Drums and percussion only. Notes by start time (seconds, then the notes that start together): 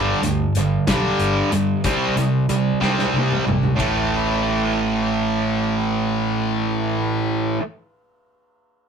0.23 closed hi-hat
0.55 closed hi-hat
0.87 kick, snare, closed hi-hat
1.19 closed hi-hat
1.52 closed hi-hat
1.84 kick, closed hi-hat
2.17 closed hi-hat
2.49 closed hi-hat
2.82 snare
2.99 snare
3.16 high tom
3.32 mid tom
3.48 mid tom
3.63 floor tom
3.79 kick, ride